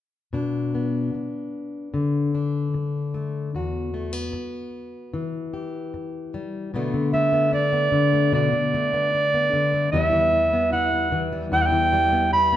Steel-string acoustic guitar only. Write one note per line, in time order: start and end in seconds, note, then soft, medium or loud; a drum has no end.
0.33 1.13 B2 medium
0.33 2.33 D4 soft
0.75 3.93 B3 soft
1.14 muted steel-string acoustic guitar stroke soft
1.94 3.54 D3 medium
2.35 3.54 D4 soft
2.74 muted steel-string acoustic guitar stroke soft
3.14 3.49 A3 soft
3.55 4.32 E2 medium
3.55 5.53 F#4 soft
3.94 4.13 A3 soft
4.13 6.74 B3 soft
4.33 muted steel-string acoustic guitar stroke medium
5.14 6.69 E3 medium
5.54 6.69 G4 soft
5.94 muted steel-string acoustic guitar stroke soft
6.34 6.74 G3 soft
6.74 6.94 B2 medium
6.74 6.92 D3 medium
6.74 7.12 A3 medium
6.74 7.32 B3 medium
6.74 7.52 D4 medium
6.94 7.91 D3 medium
7.13 8.12 A3 soft
7.33 7.72 B3 soft
7.53 8.32 D4 medium
7.73 8.93 B3 soft
7.92 8.52 D3 medium
8.14 8.73 A3 soft
8.32 8.53 B2 medium
8.32 9.13 D4 medium
8.53 9.52 D3 soft
8.74 9.73 A3 soft
8.94 9.34 B3 soft
9.14 9.94 D4 soft
9.34 9.94 B3 soft
9.53 9.93 D3 soft
9.74 9.89 A3 soft
9.92 11.51 E2 medium
9.92 10.12 E3 medium
9.92 10.33 G3 medium
9.92 10.53 B3 medium
9.92 10.72 E4 medium
10.13 11.11 E3 medium
10.33 11.32 G3 soft
10.53 10.93 B3 medium
10.73 11.52 E4 medium
10.93 12.11 B3 soft
11.12 11.71 E3 medium
11.32 11.91 G3 soft
11.52 12.57 E2 medium
11.52 12.32 E4 medium
11.72 12.57 E3 medium
11.93 12.57 G3 medium
12.12 12.51 B3 soft
12.33 12.57 E4 medium
12.53 12.57 B3 soft